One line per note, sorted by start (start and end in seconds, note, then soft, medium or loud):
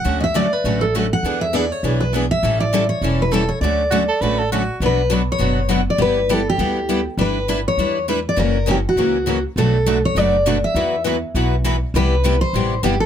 0.00 0.19 F#5 loud
0.05 0.53 D2 medium
0.05 0.25 D3 medium
0.05 0.24 F#3 medium
0.05 0.25 A3 medium
0.05 0.25 C#4 medium
0.05 0.25 F#4 medium
0.05 0.26 A4 medium
0.20 0.23 D#5 medium
0.20 0.36 E5 medium
0.35 0.46 D3 medium
0.35 0.46 F#3 medium
0.35 0.46 A3 medium
0.35 0.46 C#4 medium
0.35 0.46 F#4 medium
0.35 0.46 A4 medium
0.35 0.53 D5 medium
0.53 0.82 B4 medium
0.64 1.12 A1 medium
0.64 0.84 D3 medium
0.64 0.84 F#3 medium
0.64 0.84 A3 medium
0.64 0.84 C#4 medium
0.64 0.84 F#4 medium
0.64 0.84 A4 medium
0.81 0.93 A4 medium
0.95 1.05 D3 medium
0.95 1.05 F#3 medium
0.95 1.05 A3 medium
0.95 1.06 C#4 medium
0.95 1.06 F#4 medium
0.95 1.06 A4 medium
1.13 1.41 F#5 medium
1.23 1.71 E2 medium
1.23 1.43 E3 medium
1.23 1.44 B3 medium
1.23 1.44 D4 medium
1.23 1.44 G#4 medium
1.23 1.45 B4 medium
1.41 1.55 E5 medium
1.54 1.64 E3 medium
1.54 1.64 B3 medium
1.54 1.65 D4 medium
1.54 1.65 G#4 medium
1.54 1.65 B4 medium
1.54 1.72 D5 medium
1.72 2.02 C#5 medium
1.83 2.31 B1 medium
1.83 2.03 E3 medium
1.83 2.03 B3 medium
1.83 2.03 D4 medium
1.83 2.03 G#4 medium
1.83 2.04 B4 medium
2.00 2.12 B4 medium
2.13 2.23 E3 medium
2.13 2.24 B3 medium
2.13 2.24 D4 medium
2.13 2.24 G#4 medium
2.13 2.24 B4 medium
2.31 2.58 E5 medium
2.43 2.90 A1 medium
2.43 2.62 E3 medium
2.43 2.62 G3 medium
2.43 2.63 C#4 medium
2.43 2.63 E4 medium
2.43 2.63 A4 medium
2.60 2.89 D5 medium
2.73 2.83 E3 medium
2.73 2.84 G3 medium
2.73 2.83 C#4 medium
2.73 2.84 E4 medium
2.73 2.84 A4 loud
2.89 3.22 C#5 medium
3.01 3.49 E1 medium
3.01 3.21 E3 medium
3.01 3.22 G3 medium
3.01 3.21 C#4 medium
3.01 3.22 E4 medium
3.01 3.22 A4 medium
3.22 3.32 B4 medium
3.31 3.42 E3 medium
3.31 3.42 G3 medium
3.31 3.42 C#4 medium
3.31 3.43 E4 medium
3.31 3.49 A4 medium
3.31 3.43 A4 medium
3.49 3.60 C#5 medium
3.61 4.09 D2 medium
3.61 3.81 D3 medium
3.61 3.82 F#3 medium
3.61 3.81 A3 medium
3.61 3.81 C#4 medium
3.61 3.82 F#4 medium
3.61 3.82 A4 medium
3.61 4.46 D5 medium
3.91 4.02 D3 medium
3.91 4.02 F#3 medium
3.91 4.02 A3 medium
3.91 4.02 C#4 medium
3.91 3.99 F#4 medium
3.91 4.02 F#4 medium
3.91 4.02 A4 medium
4.08 4.23 A4 medium
4.21 4.69 A1 medium
4.21 4.41 D3 medium
4.21 4.41 F#3 medium
4.21 4.41 A3 medium
4.21 4.42 C#4 medium
4.21 4.42 F#4 medium
4.21 4.42 A4 medium
4.21 4.40 B4 medium
4.39 4.51 A4 medium
4.52 4.62 D3 medium
4.52 4.62 F#3 medium
4.52 4.62 A3 medium
4.52 4.62 C#4 medium
4.52 4.79 F#4 medium
4.52 4.62 F#4 medium
4.52 4.63 A4 medium
4.80 5.28 B1 medium
4.80 5.00 B2 medium
4.80 5.00 F#3 medium
4.80 5.00 B3 medium
4.80 5.00 D4 medium
4.80 5.01 F#4 medium
4.80 5.00 B4 medium
4.86 5.11 B4 medium
5.11 5.21 B2 medium
5.11 5.21 F#3 medium
5.11 5.21 B3 medium
5.11 5.22 D4 medium
5.11 5.22 F#4 medium
5.11 5.22 B4 medium
5.32 5.69 C#5 medium
5.39 5.87 F#1 medium
5.39 5.60 B2 medium
5.39 5.60 F#3 medium
5.39 5.60 B3 medium
5.39 5.60 D4 medium
5.39 5.60 F#4 medium
5.39 5.60 B4 medium
5.70 5.80 B2 medium
5.70 5.80 F#3 medium
5.70 5.81 B3 medium
5.70 5.81 D4 medium
5.70 5.81 F#4 medium
5.70 5.81 B4 medium
5.90 6.01 D5 medium
5.98 6.46 G1 medium
5.98 6.19 G3 medium
5.98 6.20 B3 medium
5.98 6.20 E4 medium
5.98 6.20 G4 medium
5.98 6.31 B4 medium
6.29 6.40 G3 medium
6.29 6.40 B3 medium
6.29 6.40 E4 loud
6.29 6.40 G4 loud
6.29 6.47 A4 medium
6.50 7.03 G4 medium
6.58 7.06 D2 medium
6.58 6.78 G3 medium
6.58 6.78 B3 medium
6.58 6.79 E4 medium
6.58 6.79 G4 medium
6.89 6.99 G3 medium
6.89 7.00 B3 medium
6.89 6.99 E4 medium
6.89 7.00 G4 loud
7.17 7.65 G1 medium
7.17 7.37 G3 medium
7.17 7.38 D4 medium
7.17 7.38 E4 medium
7.17 7.38 B4 medium
7.17 7.47 B4 medium
7.49 7.59 G3 medium
7.49 7.59 D4 medium
7.49 7.59 E4 loud
7.49 7.59 B4 loud
7.68 8.06 C#5 medium
7.77 8.25 E2 medium
7.77 7.97 G3 medium
7.77 7.98 D4 medium
7.77 7.98 E4 medium
7.77 7.98 B4 medium
8.08 8.18 G3 medium
8.08 8.19 D4 medium
8.08 8.19 E4 medium
8.08 8.19 B4 medium
8.29 8.39 D5 medium
8.36 8.85 F#1 medium
8.36 8.56 C#3 medium
8.36 8.56 E3 medium
8.36 8.57 F#3 medium
8.36 8.57 A#3 medium
8.36 8.57 C#4 medium
8.36 8.58 E4 medium
8.36 8.57 F#4 medium
8.36 8.58 A#4 medium
8.36 8.69 A#4 medium
8.66 8.77 C#3 medium
8.66 8.78 E3 medium
8.66 8.78 F#3 medium
8.66 8.77 A#3 medium
8.66 8.78 C#4 medium
8.66 8.79 E4 medium
8.66 8.78 F#4 medium
8.66 8.79 A#4 medium
8.71 8.76 G4 medium
8.89 9.42 F#4 medium
8.96 9.44 C#2 medium
8.96 9.16 C#3 medium
8.96 9.16 E3 medium
8.96 9.17 F#3 medium
8.96 9.17 A#3 medium
8.96 9.17 C#4 medium
8.96 9.17 E4 medium
8.96 9.17 F#4 medium
8.96 9.17 A#4 medium
9.26 9.37 C#3 medium
9.26 9.37 E3 medium
9.26 9.37 F#3 medium
9.26 9.37 A#3 medium
9.26 9.38 C#4 medium
9.26 9.38 E4 medium
9.26 9.37 F#4 medium
9.26 9.38 A#4 medium
9.56 10.04 B1 medium
9.56 9.76 B2 medium
9.56 9.76 F#3 medium
9.56 9.76 A3 medium
9.56 9.76 D4 medium
9.56 9.76 F#4 medium
9.56 10.01 A4 medium
9.56 9.77 B4 medium
9.86 9.97 B2 medium
9.86 9.97 F#3 medium
9.86 9.97 A3 medium
9.86 9.97 D4 medium
9.86 9.97 F#4 medium
9.86 9.97 B4 loud
10.05 10.18 C#5 medium
10.15 10.63 F#1 medium
10.15 10.35 B2 medium
10.15 10.36 F#3 medium
10.15 10.36 A3 medium
10.15 10.36 D4 medium
10.15 10.36 F#4 medium
10.15 10.36 B4 medium
10.15 10.46 D5 loud
10.47 10.57 B2 medium
10.47 10.57 F#3 medium
10.47 10.57 A3 medium
10.47 10.57 D4 medium
10.47 10.57 F#4 medium
10.47 10.57 B4 loud
10.64 11.03 E5 medium
10.75 11.22 E2 medium
10.75 10.95 E3 medium
10.75 10.95 F#3 medium
10.75 10.95 B3 medium
10.75 10.95 E4 medium
10.75 10.95 F#4 medium
10.75 10.95 B4 medium
11.04 11.16 E3 medium
11.04 11.16 F#3 loud
11.04 11.16 B3 medium
11.04 11.15 E4 medium
11.04 11.16 F#4 medium
11.04 11.17 B4 medium
11.34 11.82 B1 medium
11.34 11.54 E3 medium
11.34 11.54 F#3 medium
11.34 11.54 B3 medium
11.34 11.55 E4 medium
11.34 11.54 F#4 medium
11.34 11.54 B4 medium
11.64 11.75 E3 medium
11.64 11.75 F#3 medium
11.64 11.75 B3 medium
11.64 11.75 E4 medium
11.64 11.75 F#4 medium
11.64 11.76 B4 loud
11.94 12.41 C2 medium
11.94 12.13 C3 medium
11.94 12.13 G3 medium
11.94 12.13 B3 medium
11.94 12.14 E4 medium
11.94 12.14 G4 medium
11.94 12.41 B4 medium
12.24 12.34 C3 loud
12.24 12.34 G3 loud
12.24 12.35 B3 medium
12.24 12.35 E4 loud
12.24 12.35 G4 loud
12.41 12.83 C5 medium
12.53 12.78 A1 medium
12.53 12.73 C3 medium
12.53 12.73 G3 medium
12.53 12.73 B3 medium
12.53 12.73 E4 medium
12.53 12.74 G4 medium
12.83 13.06 G1 medium
12.83 12.94 C3 medium
12.83 12.95 G3 medium
12.83 12.95 B3 medium
12.83 12.95 E4 medium
12.83 13.00 G4 medium
12.83 12.95 G4 medium
13.00 13.06 A4 medium